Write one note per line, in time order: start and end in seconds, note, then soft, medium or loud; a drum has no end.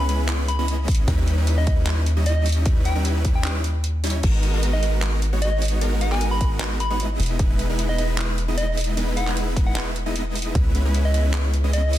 0.00 1.06 C#2 medium
0.09 0.46 G#3 medium
0.09 0.46 B3 medium
0.09 0.46 C#4 medium
0.09 0.46 E4 medium
0.09 0.46 B4 medium
0.09 0.16 B5 medium
0.09 closed hi-hat medium
0.29 clap loud
0.29 closed hi-hat medium
0.48 0.55 B5 medium
0.48 closed hi-hat medium
0.59 0.66 G#3 medium
0.59 0.66 B3 medium
0.59 0.66 C#4 medium
0.59 0.66 E4 medium
0.59 0.66 D#5 loud
0.59 0.65 B5 medium
0.68 1.05 G#3 medium
0.68 1.05 B3 medium
0.68 1.05 C#4 medium
0.68 1.05 E4 medium
0.68 1.06 D#5 medium
0.68 closed hi-hat medium
0.88 kick loud
0.88 closed hi-hat medium
0.88 open hi-hat loud
0.95 closed hi-hat medium
1.07 4.22 D#2 medium
1.07 1.35 G3 loud
1.07 1.35 C#4 medium
1.07 1.35 D#4 medium
1.07 1.35 E4 medium
1.07 1.35 B4 loud
1.07 kick loud
1.07 closed hi-hat medium
1.28 closed hi-hat medium
1.38 1.65 G3 medium
1.38 1.65 C#4 medium
1.38 1.65 D#4 medium
1.38 1.65 E4 medium
1.38 1.65 B4 loud
1.47 closed hi-hat medium
1.58 1.64 D#5 medium
1.67 2.04 G3 medium
1.67 2.04 C#4 medium
1.67 2.04 D#4 medium
1.67 2.04 E4 medium
1.67 2.04 B4 medium
1.67 kick loud
1.67 closed hi-hat medium
1.87 clap loud
1.87 closed hi-hat medium
2.06 closed hi-hat medium
2.17 2.24 G3 medium
2.17 2.24 C#4 medium
2.17 2.24 D#4 medium
2.17 2.24 E4 medium
2.17 2.24 D#5 loud
2.26 2.63 G3 medium
2.26 2.63 C#4 medium
2.26 2.63 D#4 medium
2.26 2.63 E4 medium
2.26 2.63 D#5 medium
2.26 2.41 D#5 loud
2.26 closed hi-hat medium
2.46 closed hi-hat medium
2.46 open hi-hat loud
2.52 closed hi-hat medium
2.65 2.93 G3 loud
2.65 2.93 E4 medium
2.65 2.93 B4 loud
2.65 kick loud
2.65 closed hi-hat medium
2.85 2.94 G5 loud
2.85 closed hi-hat medium
2.96 3.22 G3 medium
2.96 3.22 C#4 medium
2.96 3.22 D#4 medium
2.96 3.22 E4 medium
2.96 3.22 B4 loud
3.05 closed hi-hat medium
3.24 3.62 G3 medium
3.24 3.62 C#4 medium
3.24 3.62 D#4 medium
3.24 3.62 E4 medium
3.24 3.62 B4 medium
3.24 kick medium
3.24 closed hi-hat medium
3.35 3.41 G5 medium
3.44 3.51 G5 medium
3.44 clap loud
3.44 closed hi-hat medium
3.64 closed hi-hat medium
3.84 closed hi-hat medium
4.04 4.17 G3 medium
4.04 4.17 C#4 medium
4.04 4.17 D#4 medium
4.04 4.17 E4 medium
4.04 4.17 C#5 loud
4.04 closed hi-hat medium
4.04 open hi-hat loud
4.10 closed hi-hat medium
4.23 7.18 G#1 medium
4.23 4.51 G#3 loud
4.23 4.51 B3 medium
4.23 4.51 F#4 medium
4.23 4.51 A#4 loud
4.23 kick loud
4.23 closed hi-hat medium
4.23 crash loud
4.43 closed hi-hat medium
4.54 4.80 G#3 medium
4.54 4.80 B3 medium
4.54 4.80 D#4 medium
4.54 4.80 F#4 medium
4.54 4.80 A#4 loud
4.63 closed hi-hat medium
4.73 4.79 D#5 medium
4.82 5.20 G#3 medium
4.82 5.20 B3 medium
4.82 5.20 D#4 medium
4.82 5.20 F#4 medium
4.82 5.20 A#4 medium
4.82 4.89 D#5 medium
4.82 closed hi-hat medium
5.02 clap loud
5.02 closed hi-hat medium
5.22 closed hi-hat medium
5.33 5.40 G#3 medium
5.33 5.40 B3 medium
5.33 5.40 D#4 medium
5.33 5.40 F#4 medium
5.33 5.40 C#5 loud
5.42 5.79 G#3 medium
5.42 5.79 B3 medium
5.42 5.79 D#4 medium
5.42 5.79 F#4 medium
5.42 5.79 C#5 medium
5.42 5.56 D#5 loud
5.42 closed hi-hat medium
5.62 closed hi-hat medium
5.62 open hi-hat medium
5.68 closed hi-hat medium
5.81 6.09 G#3 loud
5.81 6.09 B3 medium
5.81 6.09 D#4 medium
5.81 6.09 F#4 medium
5.81 6.09 A#4 loud
5.81 closed hi-hat medium
6.01 6.10 F#5 medium
6.01 closed hi-hat medium
6.11 6.38 G#3 medium
6.11 6.38 B3 medium
6.11 6.38 D#4 medium
6.11 6.38 F#4 medium
6.11 6.38 A#4 loud
6.11 6.25 G#5 medium
6.11 clap soft
6.21 closed hi-hat medium
6.31 6.37 B5 medium
6.40 6.78 G#3 medium
6.40 6.78 B3 medium
6.40 6.78 D#4 medium
6.40 6.78 F#4 medium
6.40 6.78 A#4 medium
6.40 kick medium
6.40 closed hi-hat medium
6.60 clap loud
6.60 closed hi-hat medium
6.80 6.87 B5 loud
6.80 closed hi-hat medium
6.90 6.98 G#3 medium
6.90 6.98 B3 medium
6.90 6.98 D#4 medium
6.90 6.98 F#4 medium
6.90 6.98 C#5 loud
6.90 6.97 B5 medium
7.00 7.37 G#3 medium
7.00 7.37 B3 medium
7.00 7.37 D#4 medium
7.00 7.37 E4 medium
7.00 7.37 D#5 medium
7.00 closed hi-hat medium
7.20 10.53 E1 medium
7.20 closed hi-hat medium
7.20 open hi-hat medium
7.26 closed hi-hat medium
7.39 kick loud
7.39 closed hi-hat medium
7.59 closed hi-hat medium
7.69 7.96 G#3 medium
7.69 7.96 B3 medium
7.69 7.96 D#4 medium
7.69 7.96 E4 medium
7.69 7.96 B4 loud
7.79 closed hi-hat medium
7.89 7.95 D#5 medium
7.98 8.36 G#3 medium
7.98 8.36 B3 medium
7.98 8.36 D#4 medium
7.98 8.36 E4 medium
7.98 8.36 B4 medium
7.98 8.05 D#5 medium
7.98 closed hi-hat medium
8.18 clap loud
8.18 closed hi-hat medium
8.38 closed hi-hat medium
8.48 8.55 G#3 medium
8.48 8.55 B3 medium
8.48 8.55 D#4 medium
8.48 8.55 E4 medium
8.48 8.55 D#5 loud
8.57 8.95 G#3 medium
8.57 8.95 B3 medium
8.57 8.95 D#4 medium
8.57 8.95 E4 medium
8.57 8.95 D#5 medium
8.57 8.72 D#5 loud
8.57 closed hi-hat medium
8.77 closed hi-hat medium
8.77 open hi-hat medium
8.84 closed hi-hat medium
8.97 9.25 G#3 loud
8.97 9.25 B3 medium
8.97 9.25 D#4 medium
8.97 9.25 E4 medium
8.97 9.25 B4 loud
8.97 closed hi-hat medium
9.17 9.25 F#5 medium
9.17 closed hi-hat medium
9.27 9.54 G#3 medium
9.27 9.54 B3 medium
9.27 9.54 D#4 medium
9.27 9.54 E4 medium
9.27 9.54 B4 loud
9.27 clap soft
9.37 closed hi-hat medium
9.56 9.94 G#3 medium
9.56 9.94 B3 medium
9.56 9.94 D#4 medium
9.56 9.94 E4 medium
9.56 9.94 B4 medium
9.56 kick medium
9.56 closed hi-hat medium
9.66 9.73 F#5 medium
9.76 9.83 F#5 medium
9.76 clap loud
9.76 closed hi-hat medium
9.96 closed hi-hat medium
10.06 10.13 G#3 medium
10.06 10.13 B3 medium
10.06 10.13 D#4 medium
10.06 10.13 E4 medium
10.06 10.13 D#5 loud
10.15 10.53 G#3 medium
10.15 10.53 B3 medium
10.15 10.53 D#4 medium
10.15 10.53 E4 medium
10.15 10.53 D#5 medium
10.15 closed hi-hat medium
10.35 closed hi-hat medium
10.35 open hi-hat medium
10.42 closed hi-hat medium
10.55 11.98 C#2 medium
10.55 10.83 G#3 loud
10.55 10.83 B3 medium
10.55 10.83 C#4 medium
10.55 10.83 B4 loud
10.55 kick loud
10.55 closed hi-hat medium
10.75 closed hi-hat medium
10.85 11.12 G#3 medium
10.85 11.12 B3 medium
10.85 11.12 C#4 medium
10.85 11.12 E4 medium
10.85 11.12 B4 loud
10.94 closed hi-hat medium
11.05 11.11 D#5 medium
11.14 11.51 G#3 medium
11.14 11.51 B3 medium
11.14 11.51 C#4 medium
11.14 11.51 E4 medium
11.14 11.51 B4 medium
11.14 11.21 D#5 medium
11.14 closed hi-hat medium
11.34 clap loud
11.34 closed hi-hat medium
11.54 closed hi-hat medium
11.64 11.71 G#3 medium
11.64 11.71 B3 medium
11.64 11.71 C#4 medium
11.64 11.71 E4 medium
11.64 11.71 D#5 loud
11.73 11.98 G#3 medium
11.73 11.98 B3 medium
11.73 11.98 C#4 medium
11.73 11.98 E4 medium
11.73 11.98 D#5 medium
11.73 11.88 D#5 loud
11.73 closed hi-hat medium
11.93 open hi-hat medium